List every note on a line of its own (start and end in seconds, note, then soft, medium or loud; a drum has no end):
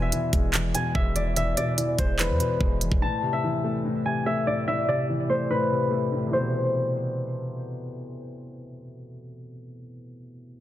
0.00 0.11 E1 loud
0.00 0.53 E2 loud
0.00 0.73 B2 medium
0.00 0.93 B4 medium
0.00 0.11 D5 medium
0.00 0.95 E5 medium
0.00 0.74 G#5 loud
0.12 1.16 E3 medium
0.12 closed hi-hat medium
0.33 0.73 E1 loud
0.33 0.94 G#3 medium
0.33 kick loud
0.33 closed hi-hat medium
0.54 1.14 E2 medium
0.54 clap loud
0.54 closed hi-hat medium
0.74 1.56 B2 medium
0.74 2.25 G#5 medium
0.74 closed hi-hat medium
0.95 1.55 E1 loud
0.95 1.98 G#3 medium
0.95 1.36 E5 medium
0.95 kick loud
1.15 1.35 E2 medium
1.15 1.57 D5 medium
1.15 closed hi-hat medium
1.36 2.18 E2 medium
1.36 3.09 E5 loud
1.36 closed hi-hat medium
1.57 2.38 B2 medium
1.57 3.42 D5 medium
1.57 closed hi-hat medium
1.78 2.81 E3 medium
1.78 closed hi-hat medium
1.98 2.31 E1 loud
1.98 2.59 G#3 medium
1.98 2.25 C5 medium
1.98 kick medium
1.98 closed hi-hat medium
2.19 2.80 E2 loud
2.19 4.24 B4 medium
2.19 clap loud
2.19 closed hi-hat medium
2.30 2.39 E2 loud
2.40 3.02 B2 medium
2.40 closed hi-hat medium
2.60 2.90 E1 loud
2.60 3.02 G#3 medium
2.60 kick loud
2.81 3.02 E2 medium
2.81 closed hi-hat medium
2.92 3.02 E1 loud
2.92 kick medium
3.02 3.83 A2 medium
3.02 4.12 A5 loud
3.22 4.04 C3 medium
3.33 4.26 E5 medium
3.44 4.47 E3 medium
3.64 4.25 A3 medium
3.85 4.45 A2 medium
4.06 4.86 C3 medium
4.06 5.56 G#5 medium
4.26 5.28 A3 medium
4.26 4.67 E5 medium
4.47 4.66 A2 medium
4.47 4.88 D5 medium
4.67 5.49 A2 medium
4.67 6.40 E5 loud
4.88 5.69 C3 medium
4.88 6.73 D5 medium
5.09 6.12 E3 medium
5.29 5.89 A3 medium
5.29 5.56 C5 medium
5.50 6.10 A2 medium
5.50 6.39 B4 medium
5.71 6.26 C3 medium
5.91 6.32 A3 medium
6.12 6.33 A2 medium
6.27 9.75 C3 medium
6.27 9.79 E3 medium
6.33 9.83 A3 medium
6.33 8.31 C5 medium
6.39 9.87 B2 medium